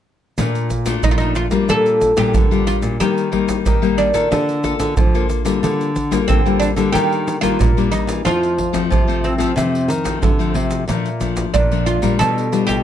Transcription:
0.38 nylon-string guitar A#2 A3 D4 F4, pandeiro, shaker, surdo
0.55 pandeiro, shaker
0.70 pandeiro, shaker, surdo
0.86 nylon-string guitar A3 D4 F4, pandeiro, shaker, surdo
1.03 nylon-string guitar A#2 F3, oud D#4, pandeiro, shaker, surdo
1.11 oud F4
1.18 nylon-string guitar A3 D4 F4, oud D#4, pandeiro, shaker
1.35 oud F4, pandeiro, shaker
1.51 nylon-string guitar G3 A#3 D4 F4, pandeiro, shaker, surdo
1.69 nylon-string guitar A#2, oud A4, pandeiro, shaker, surdo
1.86 pandeiro, shaker
2.01 pandeiro, shaker, surdo
2.17 nylon-string guitar A#2 G3 D4 F4, oud G4, pandeiro, shaker, surdo
2.34 nylon-string guitar A#2 D3, pandeiro, shaker, surdo
2.51 nylon-string guitar G3 D4 F4, pandeiro, shaker
2.67 oud F4, pandeiro
2.82 nylon-string guitar A#2, pandeiro, shaker
3.00 nylon-string guitar D#3 G3 A#3 D#4, oud G4, pandeiro, shaker, surdo
3.18 pandeiro, shaker
3.32 nylon-string guitar G3 A#3 D#4, pandeiro, surdo
3.48 pandeiro, shaker, surdo
3.65 nylon-string guitar A#2 D#3, pandeiro, shaker, surdo
3.82 nylon-string guitar G3 A#3 D#4, pandeiro, shaker
3.98 oud D4, pandeiro, shaker
4.14 nylon-string guitar D#3 A#3 F4 A4, pandeiro, shaker, surdo
4.31 nylon-string guitar D3, pandeiro, shaker, surdo
4.49 pandeiro, shaker
4.63 nylon-string guitar A#3 F4 A4, pandeiro, shaker, surdo
4.79 nylon-string guitar D3, pandeiro, shaker, surdo
4.97 nylon-string guitar D3 F3, pandeiro, shaker, surdo
5.15 nylon-string guitar A#3 F4 A4, pandeiro, shaker
5.30 pandeiro, shaker
5.45 nylon-string guitar D3 G3 A#3 F4, pandeiro, shaker
5.63 nylon-string guitar D3, pandeiro, shaker, surdo
5.81 pandeiro, shaker
5.96 pandeiro, shaker, surdo
6.11 nylon-string guitar G3 A#3 F4, pandeiro, shaker, surdo
6.28 nylon-string guitar D3, oud C4, pandeiro, shaker, surdo
6.46 nylon-string guitar G3 A#3 F4, pandeiro, shaker
6.60 oud D4, pandeiro, shaker
6.76 nylon-string guitar D3 G3 A#3 D4, pandeiro, shaker, surdo
6.92 nylon-string guitar D#3, oud G4, pandeiro, shaker, surdo
7.12 pandeiro, shaker
7.28 pandeiro, shaker
7.41 nylon-string guitar D#3 G3 A#3 D4, oud F4, pandeiro, shaker, surdo
7.59 nylon-string guitar A#2, pandeiro, shaker, surdo
7.77 nylon-string guitar G3 A#3 D4, pandeiro, shaker
7.92 oud D#4, pandeiro, shaker
8.07 nylon-string guitar E3, pandeiro, shaker
8.25 nylon-string guitar F2 F3 A3 C4, oud F4, pandeiro, shaker, surdo
8.43 pandeiro, shaker
8.58 pandeiro, surdo
8.73 nylon-string guitar F3 A3 C4, pandeiro, shaker, surdo
8.90 nylon-string guitar C3 F3, pandeiro, shaker, surdo
9.08 nylon-string guitar F3 A3 C4, pandeiro, shaker
9.24 oud C4, pandeiro
9.38 nylon-string guitar F3 A3 C4, pandeiro, shaker, surdo
9.56 nylon-string guitar F2 C3 F3 A3 C4, pandeiro, shaker, surdo
9.75 pandeiro, shaker
9.88 nylon-string guitar D#3, pandeiro, shaker
10.04 nylon-string guitar F3 A3 C4, pandeiro, shaker, surdo
10.22 nylon-string guitar C3 D3, pandeiro, shaker, surdo
10.39 nylon-string guitar F3 A3 C4, pandeiro, shaker
10.54 nylon-string guitar C3, pandeiro
10.71 pandeiro, shaker
10.88 nylon-string guitar A#2 F3 A3 D4, pandeiro, shaker, surdo
11.05 pandeiro, shaker
11.21 nylon-string guitar F3 A3 D4, pandeiro, shaker, surdo
11.37 pandeiro, shaker, surdo
11.54 nylon-string guitar F2 A#2, oud D4, pandeiro, shaker, surdo
11.71 nylon-string guitar F3 A3 D4, pandeiro, shaker
11.86 oud F4, pandeiro, shaker
12.02 nylon-string guitar A#2 G3 D4 F4, pandeiro, shaker, surdo
12.19 nylon-string guitar B2, oud A4, pandeiro, shaker, surdo
12.38 pandeiro, shaker
12.52 nylon-string guitar G3 D4 F4, pandeiro, shaker
12.67 nylon-string guitar B2, oud G4, pandeiro, shaker, surdo

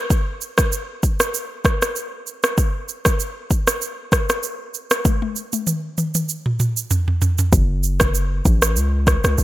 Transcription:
0.10 kick, shaker
0.41 shaker
0.58 kick, cross-stick, shaker
0.72 shaker
1.03 kick, shaker
1.20 cross-stick, shaker
1.34 shaker
1.65 kick, cross-stick, shaker
1.82 cross-stick, shaker
1.96 shaker
2.27 shaker
2.43 cross-stick, shaker
2.58 kick, shaker
2.89 shaker
3.05 kick, cross-stick, shaker
3.20 shaker
3.51 kick, shaker
3.67 cross-stick, shaker
3.82 shaker
4.12 kick, cross-stick, shaker
4.29 cross-stick, shaker
4.43 shaker
4.74 shaker
4.91 cross-stick, shaker
5.05 kick, high tom, shaker
5.22 high tom
5.36 shaker
5.53 high tom, shaker
5.67 mid tom, shaker
5.98 mid tom, shaker
6.15 mid tom, shaker
6.29 shaker
6.46 mid tom
6.60 mid tom, shaker
6.77 shaker
6.91 floor tom, shaker
7.08 floor tom
7.22 floor tom, shaker
7.38 floor tom, shaker
7.53 808-style bass F#1, kick, shaker
7.83 shaker
8.00 kick, cross-stick, shaker
8.15 shaker
8.45 808-style bass A1, kick, shaker
8.62 cross-stick, shaker
8.76 808-style bass C#2, shaker
9.07 kick, cross-stick, shaker
9.24 808-style bass C#2, cross-stick, shaker
9.38 808-style bass G#1, shaker

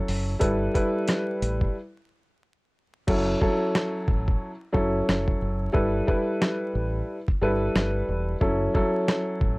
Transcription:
Already playing: upright piano F#3 C#4 E4 A4
0.08 fingered electric bass F#1, open hi-hat
0.39 fingered electric bass G1, upright piano G3 E4 A4 B4, kick, closed hi-hat
0.74 upright piano G3 E4 A4 B4, kick, closed hi-hat
1.08 cross-stick, snare, closed hi-hat
1.42 fingered electric bass A1, closed hi-hat
1.61 kick
3.07 fingered electric bass F#1, upright piano F#3 C#4 E4 A4, kick, crash
3.41 upright piano F#3 C#4 E4 A4, kick
3.75 cross-stick, snare
4.08 fingered electric bass A1, kick
4.28 kick
4.72 fingered electric bass F#1, upright piano F#3 C#4 E4 A4, kick
5.09 fingered electric bass F#1, cross-stick, snare
5.28 kick
5.42 fingered electric bass F#1
5.73 fingered electric bass G1, upright piano G3 E4 A4 B4, kick
6.07 upright piano G3 E4 A4 B4, kick
6.42 cross-stick, snare
6.75 fingered electric bass A1
7.28 kick
7.42 fingered electric bass G1, upright piano G3 E4 A4 B4
7.75 fingered electric bass G1, cross-stick, snare
8.08 fingered electric bass E1
8.40 fingered electric bass F#1, upright piano F#3 C#4 E4 A4, kick
8.74 upright piano F#3 C#4 E4 A4, kick
9.08 cross-stick, snare
9.41 fingered electric bass A1, kick

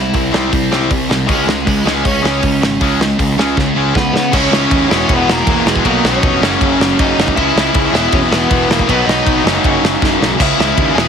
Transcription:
Already playing: distorted electric guitar C3 G3 C4, overdriven electric guitar E4 E5
0.14 picked electric bass C2, distorted electric guitar C3 G3, kick, open hi-hat
0.31 picked electric bass C2, distorted electric guitar C3 G3 C4, snare
0.52 picked electric bass C2, distorted electric guitar C3 G3 C4, kick, open hi-hat
0.71 picked electric bass C2, distorted electric guitar C3 G3 C4, snare
0.90 picked electric bass C2, distorted electric guitar C3 G3, kick, open hi-hat
1.09 picked electric bass C2, distorted electric guitar C3 G3, snare
1.27 picked electric bass C#2, distorted electric guitar C#3 G#3 C#4, kick, open hi-hat
1.33 overdriven electric guitar G#3 G#4
1.47 picked electric bass C#2, distorted electric guitar C#3 G#3, snare
1.66 picked electric bass C#2, distorted electric guitar C#3 G#3, overdriven electric guitar G#3 G#4, kick, open hi-hat
1.85 picked electric bass C#2, distorted electric guitar C#3 G#3 C#4, snare
2.04 picked electric bass C#2, distorted electric guitar C#3 G#3 C#4, overdriven electric guitar C#4 C#5, kick, open hi-hat
2.22 picked electric bass C#2, distorted electric guitar C#3 G#3 C#4, snare
2.41 picked electric bass C#2, distorted electric guitar C#3 G#3, kick, open hi-hat
2.61 picked electric bass G#1, distorted electric guitar C#3 G#3, snare
2.81 picked electric bass C#2, distorted electric guitar C#3 G#3 C#4, kick, open hi-hat
3.00 distorted electric guitar C#3 G#3, snare
3.19 picked electric bass C#2, distorted electric guitar C#3 G#3, kick, open hi-hat
3.38 picked electric bass C#2, distorted electric guitar C#3 G#3 C#4, snare
3.57 picked electric bass C#2, distorted electric guitar C#3 G#3 C#4, kick, snare
3.75 picked electric bass C#2, distorted electric guitar C#3 G#3 C#4
3.95 picked electric bass C#2, distorted electric guitar C#3 G#3, overdriven electric guitar B3 B4, kick, snare
4.13 distorted electric guitar C#3 G#3, picked electric bass C#3, snare
4.31 picked electric bass C#2, distorted electric guitar C#3 G#3 C#4 E4, overdriven electric guitar C#4 C#5, kick, crash
4.51 picked electric bass C#2, snare
4.71 picked electric bass D#2, kick, ride
4.88 picked electric bass E1, distorted electric guitar E2 B2 E3 G#3 B3 E4, snare
4.92 distorted electric guitar E3, overdriven electric guitar C#4 C#5
5.09 picked electric bass E1, kick, ride
5.13 overdriven electric guitar B3 B4
5.28 picked electric bass E1, overdriven electric guitar A#3, snare
5.32 overdriven electric guitar A#4
5.46 picked electric bass E1, distorted electric guitar E2 B2 E3, kick, ride
5.66 picked electric bass E1, overdriven electric guitar G#3 G#4, snare
5.76 kick
5.84 picked electric bass B1, distorted electric guitar B2 F#3 B3 D#4, overdriven electric guitar A#3 A#4, kick, ride
6.04 picked electric bass B1, overdriven electric guitar C#4 C#5, snare
6.23 picked electric bass F1, kick, ride
6.41 picked electric bass F#1, distorted electric guitar F#2 C#3 F#3 A#3 C#4, snare
6.61 picked electric bass F#1, kick, ride
6.80 picked electric bass F#1, snare
6.97 picked electric bass F#1, distorted electric guitar F#2 C#3 F#3, overdriven electric guitar D#4 D#5, kick, ride
7.18 picked electric bass F#1, snare
7.28 kick
7.35 picked electric bass C#2, distorted electric guitar C#3 G#3 C#4 E4, overdriven electric guitar E4 E5, kick, ride
7.56 picked electric bass C#2, snare
7.74 picked electric bass C#2, kick, ride
7.92 picked electric bass E1, distorted electric guitar E2 B2 E3 G#3 B3 E4, overdriven electric guitar E4 E5, snare
7.97 distorted electric guitar E3
8.12 picked electric bass E1, overdriven electric guitar C#4 C#5, kick, ride
8.31 picked electric bass E1, overdriven electric guitar B3 B4, snare
8.49 picked electric bass E1, distorted electric guitar E2 B2 E3, kick, ride
8.69 picked electric bass E1, overdriven electric guitar A#3 A#4, snare
8.79 kick
8.89 picked electric bass B1, distorted electric guitar B2 F#3 B3 D#4, overdriven electric guitar B3 B4, kick, ride
9.06 picked electric bass B1, overdriven electric guitar D#4 D#5, snare
9.27 picked electric bass B1, kick, ride
9.44 picked electric bass F#1, distorted electric guitar F#2 C#3 F#3 A#3, snare
9.48 distorted electric guitar C#4
9.64 picked electric bass F#1, kick, ride
9.83 picked electric bass F#1, snare
10.01 picked electric bass F#1, distorted electric guitar F#2 C#3 F#3, kick, snare
10.21 picked electric bass B1, snare
10.39 picked electric bass C#2, distorted electric guitar C#3 G#3 C#4 E4, overdriven electric guitar E4 E5, kick, crash
10.59 picked electric bass C#2, overdriven electric guitar E4 E5, snare
10.77 picked electric bass D#2, kick, ride
10.95 picked electric bass E1, distorted electric guitar E2 B2 E3 G#3 B3, overdriven electric guitar G#4 G#5, snare
10.99 distorted electric guitar E4

